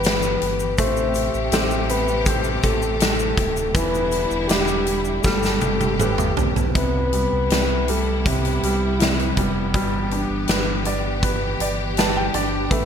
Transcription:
Already playing: G1 E3 G3 E4 G4 B4
0.04 snare, closed hi-hat, shaker
0.22 shaker
0.42 G1, closed hi-hat
0.59 shaker
0.78 A1 C3 A3 G4 C5, kick, closed hi-hat, shaker
0.97 shaker
1.14 closed hi-hat, shaker
1.34 A1, shaker
1.52 A1 C4 G4 A4, snare, closed hi-hat, shaker
1.71 shaker
1.89 B4, closed hi-hat, shaker
2.08 shaker
2.26 G4 A4 C5, kick, closed hi-hat, shaker
2.44 shaker
2.63 A1 A4, kick, closed hi-hat, shaker
2.82 shaker
3.00 snare, closed hi-hat, shaker
3.19 shaker
3.37 D1, kick, closed hi-hat
3.57 shaker
3.74 E1 D3 E3 G3 E4 B4, kick, closed hi-hat, shaker
3.95 shaker
4.12 closed hi-hat, shaker
4.31 E1, shaker
4.47 E1 D4 E4 G4, snare, closed hi-hat, shaker
4.67 shaker
4.87 closed hi-hat, shaker
5.05 shaker
5.23 G1 B2 G3 A3 G4 A4, kick, snare, shaker
5.43 snare, shaker
5.61 G1, high tom, shaker
5.81 high tom, shaker
6.00 G4 A4 B4, mid tom, shaker
6.18 mid tom, shaker
6.37 B1, floor tom, shaker
6.56 floor tom, shaker
6.75 C2 C3 B3 E4 B4, kick, closed hi-hat
7.13 G3, closed hi-hat
7.32 C2
7.50 C2 C3, snare, closed hi-hat
7.88 G3 A4, closed hi-hat
8.26 C3 G4, kick, closed hi-hat
8.45 closed hi-hat
8.63 C2 G3, closed hi-hat
8.99 C3 E4, snare, closed hi-hat
9.19 closed hi-hat
9.37 F1 G3, kick, closed hi-hat
9.74 G1 E3 G3 G4, kick, closed hi-hat
10.11 D4, closed hi-hat
10.30 G1
10.48 G1 B4, snare, closed hi-hat
10.85 D5, closed hi-hat
11.23 B4, kick, closed hi-hat
11.60 G1 D5, closed hi-hat
11.97 B4 A5, snare, closed hi-hat
12.17 G5
12.34 G1 D4 D5, closed hi-hat
12.69 A1 C3 A3 B4, kick, closed hi-hat

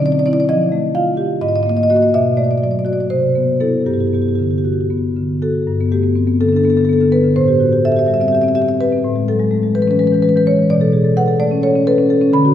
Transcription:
Already playing: D3
0.02 C4
0.06 D5
0.12 D5
0.19 D5
0.26 C4 E4 D5
0.33 D5
0.40 D5
0.49 F3 D#5
0.72 A3
0.95 F4 F5
1.17 G4
1.41 G#2 D#5
1.49 D#5
1.56 D#5
1.63 A#3 D#5
1.69 D#5
1.77 D#5
1.83 D#5
1.90 A#3 F#4 D#5
1.96 D#5
2.02 D#5
2.14 B2 E5
2.37 A3 D5
2.44 D5
2.51 D5
2.58 D5
2.62 F#3 D5
2.71 D5
2.79 D5
2.85 F#4 D5
2.93 D5
3.00 D5
3.10 C3 C5
3.35 B3
3.60 B3 E4 A4
3.86 G2 G4
3.93 G4
4.00 G4
4.07 G4
4.13 B3 G4
4.22 G4
4.28 G4
4.35 D3 G4
4.43 G4
4.51 G4
4.58 G4
4.64 F#4 G4
4.73 G4
4.81 G4
4.90 B3
5.16 D3
5.42 F#4 A4
5.67 G2
5.81 B3
5.92 A3 G4
6.03 B3
6.15 C4
6.27 B3
6.40 D3 A4
6.49 D4 A4
6.56 A4
6.63 B3 A4
6.70 A4
6.77 D3 A4
6.85 A4
6.89 B3 A4
7.01 D3 A4
7.12 B3 B4
7.24 D3
7.36 A2 C5
7.48 G4
7.60 F#4
7.73 G4
7.85 A4 E5
7.92 E5
7.96 G4 E5
8.06 G3 E5
8.14 E5
8.20 C4 E5
8.28 E5
8.32 G4 E5
8.41 C4 E5
8.48 E5
8.55 G4 E5
8.62 E5
8.68 C4 E5
8.80 G4 B4
8.92 C4
9.04 A2
9.16 G#3
9.28 F#3 A4
9.39 G#3
9.51 A3
9.63 G#3
9.75 E3 B4
9.82 B4
9.88 C#4 B4
9.99 G#3 B4
10.07 B4
10.12 E3 B4
10.22 G#3 B4
10.29 B4
10.36 E3 B4
10.47 G#3 C#5
10.59 E3
10.70 B2 D5
10.81 A4
10.93 G#4
11.04 A4
11.17 B4 F#5
11.28 A4
11.40 A3 D5
11.51 C#4
11.63 A4 C#5
11.75 C#4
11.87 A4 B4
11.98 C#4
12.10 A4
12.21 C#4
12.33 D3 B5
12.45 F#4

